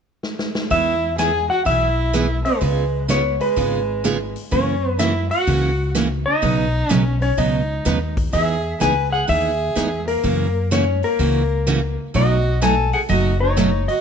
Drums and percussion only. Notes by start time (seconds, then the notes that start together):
0.23 snare
0.39 snare
0.55 snare
0.71 kick, open hi-hat
1.19 snare, closed hi-hat
1.66 kick, open hi-hat
2.14 snare, closed hi-hat
2.45 open hi-hat
2.62 kick, open hi-hat
3.09 snare, closed hi-hat
3.40 open hi-hat
3.57 kick, open hi-hat
4.05 snare, closed hi-hat
4.36 open hi-hat
4.52 kick, open hi-hat
5.00 snare, closed hi-hat
5.31 open hi-hat
5.47 kick, open hi-hat
5.95 snare, closed hi-hat
6.43 kick, open hi-hat
6.91 snare, closed hi-hat
7.22 open hi-hat
7.38 kick, open hi-hat
7.86 snare, closed hi-hat
8.17 kick, open hi-hat
8.33 kick, open hi-hat
8.81 snare, closed hi-hat
9.29 kick, open hi-hat
9.77 snare, closed hi-hat
10.08 open hi-hat
10.24 kick, open hi-hat
10.72 snare, closed hi-hat
11.03 open hi-hat
11.19 kick, open hi-hat
11.67 snare, closed hi-hat
12.15 kick, open hi-hat
12.62 snare, closed hi-hat
12.93 open hi-hat
13.10 kick, open hi-hat
13.57 snare, closed hi-hat
13.89 open hi-hat